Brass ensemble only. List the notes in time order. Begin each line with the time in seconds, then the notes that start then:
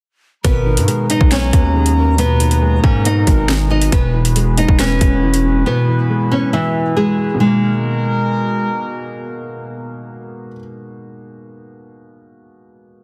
0.44 B2 G#3 D#4 A#5
3.92 E4 B4
7.40 B2 G#3 D#4 A#4